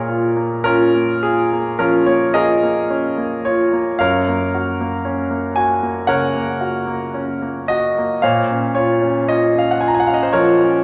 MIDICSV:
0, 0, Header, 1, 2, 480
1, 0, Start_track
1, 0, Key_signature, -5, "minor"
1, 0, Tempo, 1117318
1, 1718, Tempo, 1043478
1, 1719, Time_signature, 4, 2, 24, 8
1, 3158, Tempo, 1067616
1, 4826, End_track
2, 0, Start_track
2, 0, Title_t, "Grand piano"
2, 0, Program_c, 0, 0
2, 0, Control_c, 0, 64, 127
2, 0, Note_on_c, 0, 46, 48
2, 0, Note_on_c, 0, 58, 37
2, 0, Note_on_c, 0, 68, 52
2, 0, Note_on_c, 0, 70, 54
2, 0, Note_on_c, 0, 73, 65
2, 38, Note_on_c, 0, 65, 40
2, 111, Note_off_c, 0, 58, 0
2, 158, Note_on_c, 0, 58, 38
2, 234, Note_off_c, 0, 65, 0
2, 266, Note_off_c, 0, 70, 0
2, 267, Note_off_c, 0, 68, 0
2, 275, Note_on_c, 0, 70, 76
2, 280, Note_on_c, 0, 61, 51
2, 281, Note_off_c, 0, 73, 0
2, 281, Note_on_c, 0, 65, 54
2, 354, Note_off_c, 0, 58, 0
2, 410, Note_on_c, 0, 58, 34
2, 507, Note_off_c, 0, 61, 0
2, 507, Note_off_c, 0, 65, 0
2, 521, Note_off_c, 0, 70, 0
2, 527, Note_on_c, 0, 68, 60
2, 534, Note_on_c, 0, 65, 37
2, 600, Note_off_c, 0, 58, 0
2, 656, Note_on_c, 0, 58, 34
2, 723, Note_off_c, 0, 65, 0
2, 749, Note_off_c, 0, 46, 0
2, 767, Note_off_c, 0, 68, 0
2, 768, Note_on_c, 0, 70, 68
2, 770, Note_on_c, 0, 53, 38
2, 772, Note_on_c, 0, 61, 51
2, 774, Note_on_c, 0, 65, 52
2, 844, Note_off_c, 0, 58, 0
2, 881, Note_off_c, 0, 61, 0
2, 882, Note_off_c, 0, 65, 0
2, 887, Note_on_c, 0, 73, 68
2, 888, Note_off_c, 0, 70, 0
2, 891, Note_on_c, 0, 58, 36
2, 961, Note_off_c, 0, 53, 0
2, 1004, Note_on_c, 0, 75, 83
2, 1007, Note_off_c, 0, 73, 0
2, 1007, Note_on_c, 0, 68, 62
2, 1009, Note_on_c, 0, 70, 58
2, 1010, Note_on_c, 0, 65, 45
2, 1081, Note_off_c, 0, 58, 0
2, 1131, Note_on_c, 0, 58, 42
2, 1201, Note_off_c, 0, 65, 0
2, 1247, Note_on_c, 0, 61, 42
2, 1321, Note_off_c, 0, 58, 0
2, 1366, Note_on_c, 0, 58, 38
2, 1438, Note_off_c, 0, 61, 0
2, 1469, Note_off_c, 0, 68, 0
2, 1470, Note_off_c, 0, 70, 0
2, 1482, Note_on_c, 0, 73, 67
2, 1485, Note_off_c, 0, 75, 0
2, 1488, Note_on_c, 0, 65, 47
2, 1557, Note_off_c, 0, 58, 0
2, 1603, Note_on_c, 0, 58, 36
2, 1674, Note_off_c, 0, 65, 0
2, 1713, Note_off_c, 0, 73, 0
2, 1713, Note_on_c, 0, 77, 77
2, 1718, Note_off_c, 0, 58, 0
2, 1720, Note_on_c, 0, 42, 51
2, 1720, Note_on_c, 0, 73, 59
2, 1721, Note_on_c, 0, 70, 61
2, 1725, Control_c, 0, 64, 0
2, 1800, Control_c, 0, 64, 127
2, 1849, Note_on_c, 0, 58, 39
2, 1969, Note_on_c, 0, 66, 45
2, 2036, Note_off_c, 0, 58, 0
2, 2090, Note_on_c, 0, 58, 43
2, 2156, Note_off_c, 0, 66, 0
2, 2201, Note_on_c, 0, 61, 45
2, 2276, Note_off_c, 0, 58, 0
2, 2320, Note_on_c, 0, 58, 37
2, 2392, Note_off_c, 0, 61, 0
2, 2421, Note_off_c, 0, 73, 0
2, 2422, Note_off_c, 0, 70, 0
2, 2435, Note_on_c, 0, 80, 77
2, 2436, Note_off_c, 0, 77, 0
2, 2441, Note_on_c, 0, 66, 40
2, 2512, Note_off_c, 0, 58, 0
2, 2559, Note_on_c, 0, 58, 41
2, 2632, Note_off_c, 0, 66, 0
2, 2661, Note_off_c, 0, 42, 0
2, 2672, Note_on_c, 0, 78, 78
2, 2676, Note_off_c, 0, 80, 0
2, 2676, Note_on_c, 0, 73, 65
2, 2677, Note_on_c, 0, 49, 38
2, 2679, Note_on_c, 0, 70, 61
2, 2750, Note_off_c, 0, 58, 0
2, 2800, Note_on_c, 0, 58, 43
2, 2869, Note_off_c, 0, 49, 0
2, 2919, Note_on_c, 0, 66, 41
2, 2991, Note_off_c, 0, 58, 0
2, 3040, Note_on_c, 0, 58, 40
2, 3112, Note_off_c, 0, 66, 0
2, 3164, Note_on_c, 0, 61, 40
2, 3233, Note_off_c, 0, 58, 0
2, 3290, Note_on_c, 0, 58, 36
2, 3356, Note_off_c, 0, 61, 0
2, 3384, Note_off_c, 0, 73, 0
2, 3385, Note_off_c, 0, 70, 0
2, 3400, Note_off_c, 0, 78, 0
2, 3407, Note_on_c, 0, 75, 79
2, 3414, Note_on_c, 0, 66, 46
2, 3481, Note_off_c, 0, 58, 0
2, 3542, Note_on_c, 0, 58, 39
2, 3603, Note_off_c, 0, 66, 0
2, 3648, Note_off_c, 0, 75, 0
2, 3649, Note_on_c, 0, 77, 76
2, 3652, Control_c, 0, 64, 0
2, 3652, Note_on_c, 0, 73, 53
2, 3654, Note_off_c, 0, 58, 0
2, 3654, Note_on_c, 0, 72, 47
2, 3655, Note_on_c, 0, 46, 54
2, 3723, Control_c, 0, 64, 127
2, 3776, Note_on_c, 0, 61, 41
2, 3868, Note_off_c, 0, 73, 0
2, 3869, Note_off_c, 0, 72, 0
2, 3883, Note_off_c, 0, 77, 0
2, 3885, Note_on_c, 0, 73, 66
2, 3891, Note_on_c, 0, 65, 45
2, 3957, Note_off_c, 0, 61, 0
2, 4008, Note_on_c, 0, 61, 43
2, 4075, Note_off_c, 0, 65, 0
2, 4120, Note_off_c, 0, 73, 0
2, 4127, Note_on_c, 0, 75, 73
2, 4129, Note_on_c, 0, 65, 45
2, 4195, Note_off_c, 0, 61, 0
2, 4247, Note_on_c, 0, 61, 37
2, 4262, Note_on_c, 0, 77, 63
2, 4268, Note_off_c, 0, 75, 0
2, 4317, Note_off_c, 0, 65, 0
2, 4318, Note_on_c, 0, 78, 56
2, 4319, Note_off_c, 0, 77, 0
2, 4361, Note_on_c, 0, 80, 62
2, 4362, Note_off_c, 0, 78, 0
2, 4368, Note_on_c, 0, 65, 38
2, 4394, Note_on_c, 0, 82, 58
2, 4397, Note_off_c, 0, 80, 0
2, 4424, Note_on_c, 0, 80, 64
2, 4426, Note_off_c, 0, 82, 0
2, 4437, Note_off_c, 0, 61, 0
2, 4447, Note_on_c, 0, 78, 59
2, 4455, Note_off_c, 0, 80, 0
2, 4480, Note_on_c, 0, 61, 37
2, 4480, Note_on_c, 0, 77, 53
2, 4483, Note_off_c, 0, 78, 0
2, 4511, Note_on_c, 0, 75, 56
2, 4519, Note_off_c, 0, 77, 0
2, 4552, Note_on_c, 0, 72, 56
2, 4555, Note_off_c, 0, 75, 0
2, 4558, Note_off_c, 0, 65, 0
2, 4588, Note_off_c, 0, 46, 0
2, 4595, Note_on_c, 0, 73, 76
2, 4597, Note_off_c, 0, 72, 0
2, 4599, Note_on_c, 0, 53, 41
2, 4599, Note_on_c, 0, 70, 58
2, 4601, Note_on_c, 0, 65, 54
2, 4673, Note_off_c, 0, 61, 0
2, 4721, Note_on_c, 0, 61, 38
2, 4791, Note_off_c, 0, 53, 0
2, 4826, Note_off_c, 0, 61, 0
2, 4826, Note_off_c, 0, 65, 0
2, 4826, Note_off_c, 0, 70, 0
2, 4826, Note_off_c, 0, 73, 0
2, 4826, End_track
0, 0, End_of_file